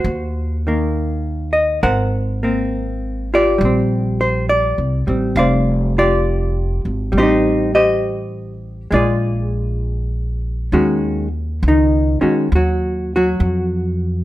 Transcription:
Already playing: hollow-body jazz guitar F#4 C5
0.04 upright bass D#2
0.67 hollow-body jazz guitar D#3 A#3
1.53 hollow-body jazz guitar D#5
1.83 upright bass G#1, hollow-body jazz guitar A#4 C5 F#5
2.43 hollow-body jazz guitar A#3 C4
3.34 hollow-body jazz guitar F4 G4 D5
3.58 upright bass A#1, hollow-body jazz guitar G3
3.65 hollow-body jazz guitar C4
4.21 hollow-body jazz guitar C5
4.49 hollow-body jazz guitar D5
4.78 upright bass C2
5.07 upright bass A1, hollow-body jazz guitar G3 C4
5.36 upright bass F1, hollow-body jazz guitar C5 D5 F5
5.98 hollow-body jazz guitar F4 G4 D5
6.85 upright bass G#1
7.12 upright bass A1, hollow-body jazz guitar G3
7.18 hollow-body jazz guitar C4 D#4 G4 C5
7.22 hollow-body jazz guitar D#4
7.75 hollow-body jazz guitar G4 C5 D#5
8.91 upright bass A#1, hollow-body jazz guitar G#3 D5
8.95 hollow-body jazz guitar F4 G#4
10.72 upright bass D#2, hollow-body jazz guitar D#3 G#3 C#4 F#4
11.63 upright bass C#2
11.68 hollow-body jazz guitar D#3 D#4
12.21 hollow-body jazz guitar D#3 G#3 C#4 F#4, muted upright bass stroke
12.52 upright bass D#2, hollow-body jazz guitar F#4
12.56 hollow-body jazz guitar F#3
13.16 hollow-body jazz guitar F#3 F#4
13.40 upright bass F2

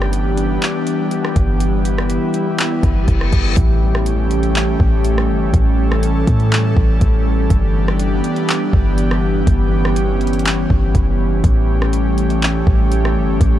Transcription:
Already playing: 808-style bass G1, analog synth pad E3 G3 B3 D4 G4
0.02 cross-stick
0.13 closed hi-hat
0.37 closed hi-hat
0.62 clap, closed hi-hat
0.87 closed hi-hat
1.11 closed hi-hat
1.25 cross-stick
1.36 808-style bass G1, kick, closed hi-hat
1.60 analog synth pad E4, closed hi-hat
1.85 closed hi-hat
1.98 cross-stick
2.10 closed hi-hat
2.34 closed hi-hat
2.58 clap, closed hi-hat, reverse cymbal
2.83 808-style bass G1, kick, closed hi-hat
3.08 808-style bass F#1, kick, closed hi-hat
3.21 cross-stick
3.33 808-style bass G1, kick, closed hi-hat
3.57 808-style bass A1, analog synth pad E3 G3 A3 C#4 G4, kick, closed hi-hat, impact
3.95 cross-stick
4.06 closed hi-hat
4.31 closed hi-hat
4.43 closed hi-hat
4.55 clap, closed hi-hat
4.80 808-style bass A1, kick
5.04 closed hi-hat
5.18 cross-stick
5.29 808-style bass G1
5.54 808-style bass A1, analog synth pad A4, kick, closed hi-hat
5.92 cross-stick
6.03 closed hi-hat
6.27 808-style bass A2, kick, closed hi-hat
6.40 closed hi-hat
6.52 clap, closed hi-hat
6.77 808-style bass A1, kick
7.01 808-style bass A1, kick, closed hi-hat
7.50 808-style bass G1, analog synth pad B3 D4 G4, kick, closed hi-hat
7.88 cross-stick
7.99 closed hi-hat
8.24 closed hi-hat
8.36 closed hi-hat
8.49 clap, closed hi-hat
8.73 808-style bass G1, kick
8.98 closed hi-hat
9.11 cross-stick
9.47 808-style bass G1, analog synth pad C#4, kick, closed hi-hat
9.85 cross-stick
9.96 closed hi-hat
10.21 closed hi-hat
10.27 closed hi-hat
10.33 closed hi-hat
10.39 closed hi-hat
10.45 clap, closed hi-hat
10.70 808-style bass G1, kick
10.95 808-style bass F#1, kick, closed hi-hat
11.44 808-style bass A1, analog synth pad G3 A3 G4, kick, closed hi-hat
11.82 cross-stick
11.93 closed hi-hat
12.18 closed hi-hat
12.30 closed hi-hat
12.42 clap, closed hi-hat
12.67 808-style bass A1, kick
12.92 closed hi-hat
13.05 cross-stick
13.16 808-style bass G1
13.41 808-style bass A1, kick, closed hi-hat

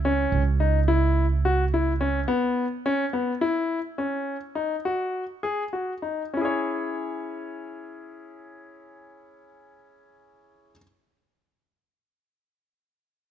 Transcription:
Already playing: upright bass C#2
0.05 grand piano C#4
0.32 upright bass C#2
0.60 grand piano D#4
0.88 grand piano E4
1.45 grand piano F#4
1.74 grand piano E4
2.01 grand piano C#4
2.28 grand piano B3
2.86 grand piano C#4
3.13 grand piano B3
3.41 grand piano E4
3.98 grand piano C#4
4.55 grand piano D#4
4.85 grand piano F#4
5.43 grand piano G#4
5.73 grand piano F#4
6.02 grand piano D#4
6.34 grand piano C#4 E4
6.41 grand piano G#4 C#5

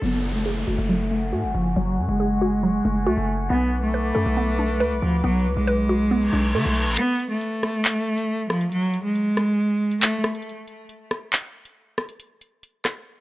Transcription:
0.02 808-style bass F#1, synth pluck F#3, cello B3, ambient pad F#5 G#5 C#6, downlifter
0.35 cello A3
0.46 synth pluck G#4
0.67 808-style bass F#1, synth pluck F#4
0.78 808-style bass F#1
0.89 synth pluck F#3
1.11 synth pluck A3
1.33 808-style bass A2, synth pluck F#4
1.44 808-style bass F#1
1.54 808-style bass F#1, cello F3
1.76 808-style bass F#1, cello F#3, synth pluck F#3
1.98 808-style bass F#2
2.09 808-style bass F#1, cello G#3
2.20 synth pluck G#4
2.42 synth pluck F#4
2.63 synth pluck F#3
2.85 808-style bass F#1, synth pluck A3
3.07 808-style bass C#2, cello A3, synth pluck F#4
3.18 808-style bass F#1
3.50 808-style bass B1, cello B3, synth pluck B3, ambient pad B4 D6
3.83 cello A3
3.94 synth pluck B4
4.15 808-style bass F#2, synth pluck A4
4.26 808-style bass B1
4.37 synth pluck B3
4.59 synth pluck D4
4.80 808-style bass D2, synth pluck B4
4.91 808-style bass B1
5.02 808-style bass D2, cello F3
5.24 808-style bass B1, cello F#3, synth pluck B3
5.46 808-style bass C#2
5.56 808-style bass B1, cello G#3
5.67 synth pluck B4
5.89 synth pluck F#4
6.11 synth pluck B3, reverse cymbal
6.33 808-style bass B1, synth pluck D4
6.54 808-style bass D3, cello A3, synth pluck A4
6.65 808-style bass B1
6.87 808-style bass A1
6.98 cello B3, closed hi-hat
7.20 closed hi-hat
7.31 cello A3
7.41 closed hi-hat
7.63 cross-stick, closed hi-hat
7.85 clap
8.18 closed hi-hat
8.50 cello F3, cross-stick
8.61 closed hi-hat
8.72 cello F#3, closed hi-hat
8.94 closed hi-hat
9.04 cello G#3
9.15 closed hi-hat
9.37 cross-stick, closed hi-hat
9.91 closed hi-hat
10.02 cello A3, clap
10.24 cross-stick, closed hi-hat
10.35 closed hi-hat
10.42 closed hi-hat
10.49 closed hi-hat
10.68 closed hi-hat
10.89 closed hi-hat
11.11 cross-stick, closed hi-hat
11.33 clap
11.65 closed hi-hat
11.98 cross-stick
12.09 closed hi-hat
12.20 closed hi-hat
12.41 closed hi-hat
12.63 closed hi-hat
12.85 cross-stick, clap, closed hi-hat

